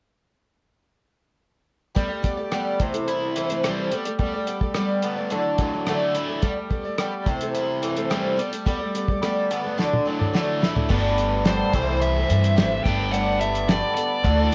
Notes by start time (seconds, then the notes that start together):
1.95 G3 A3 B3 G4 D5, kick, closed hi-hat
2.08 A3 G4 D5
2.22 A3 B3 G4 D5, kick, closed hi-hat
2.38 A3 G4 D5
2.52 G3 A3 B3 G4 D5, cross-stick, closed hi-hat
2.80 C3 E3 A3 A4 C5, kick, closed hi-hat
2.93 E3 A3 A4 C5, closed hi-hat
3.08 E4, closed hi-hat
3.36 E3 A3 A4 C5, closed hi-hat
3.50 E3 A3 A4 C5, closed hi-hat
3.64 C3 E3 G3 A3 A4 C5, cross-stick, closed hi-hat
3.91 G3 A3 B3 A4 D5, closed hi-hat
4.05 A3 A4 D5, closed hi-hat
4.19 G3 A3 B3 A4 D5, kick, closed hi-hat
4.34 A3 A4 D5
4.47 A3 B3 A4 D5, closed hi-hat
4.61 A3 A4 D5, kick
4.74 G3 A3 B3 A4 D5, cross-stick, closed hi-hat
5.02 A3 B3 A4 D5, closed hi-hat
5.16 A3 A4 D5
5.30 D3 E3 F#3 A3 A4 D5, closed hi-hat
5.58 E3 F#3 A3 A4 D5, kick, closed hi-hat
5.73 E3 A3 A4 D5
5.86 D3 E3 F#3 A3 A4 D5, cross-stick, closed hi-hat
6.14 E3 A3 E4 A4 D5, closed hi-hat
6.28 E3 A3 A4 D5
6.42 G3 A3 B3 A4 D5, kick, closed hi-hat
6.56 A3 A4 D5
6.69 A3 B3 A4 D5, kick, closed hi-hat
6.85 A3 A4 D5
6.98 G3 A3 B3 A4 D5, cross-stick, closed hi-hat
7.26 C3 E3 A3 A4 C5, kick, closed hi-hat
7.41 E3 A3 A4 C5, closed hi-hat
7.54 E4, closed hi-hat
7.82 E3 A3 A4 C5, closed hi-hat
7.96 E3 A3 A4 C5, closed hi-hat
8.10 C3 E3 G3 A3 A4 C5, cross-stick, closed hi-hat
8.37 G3 A3 B3 A4 D5, closed hi-hat
8.52 A3 A4 D5, closed hi-hat
8.65 G3 A3 B3 A4 D5, kick, closed hi-hat
8.80 A3 A4 D5
8.95 A3 B3 A4 D5, closed hi-hat
9.08 A3 A4 D5, kick
9.22 G3 A3 B3 A4 D5, cross-stick, closed hi-hat
9.50 A3 B3 A4 D5, closed hi-hat
9.64 A3 A4 D5
9.77 D3 E3 F#3 A3 A4 D5, snare
9.93 high tom
10.05 E3 F#3 A3 A4 D5
10.19 E3 A3 A4 D5, mid tom
10.33 D3 E3 F#3 A3 A4 D5, snare
10.60 E3 A3 E4 A4 D5, snare
10.74 E3 A3 A4 D5, floor tom
10.88 G1 G3 A3 B3 D4 A4 B4 D5, kick, crash
11.18 closed hi-hat
11.44 G3 A3 B3 A4 C5 D5, snare, closed hi-hat
11.72 C2 C3 E3 G3 A3 C4 E4 A4 C5, kick, closed hi-hat
11.87 E3 A3 A4 C5
12.01 E5, closed hi-hat
12.15 E3 A3 A4 C5
12.28 G2 E3 A3 A4 C5, closed hi-hat
12.44 closed hi-hat
12.56 G#1 C3 E3 G3 A3 A4 C5, snare, closed hi-hat
12.70 E3 A3 A4 C5
12.84 G1 G3 A3 B3 D4 A4 B4 D5 G5, kick, closed hi-hat
12.98 A3 A4 D5
13.11 G3 A3 B3 A4 D5 F#5, closed hi-hat
13.40 A3 B3 A4 D5 E5, closed hi-hat
13.55 closed hi-hat
13.68 G3 A3 B3 A4 D5, snare, closed hi-hat
13.95 A3 B3 A4 D5, closed hi-hat
14.23 D2 D3 E3 F#3 A3 D4 F#4 A4 D5, kick, closed hi-hat
14.38 E3 A3 A4 D5
14.51 E3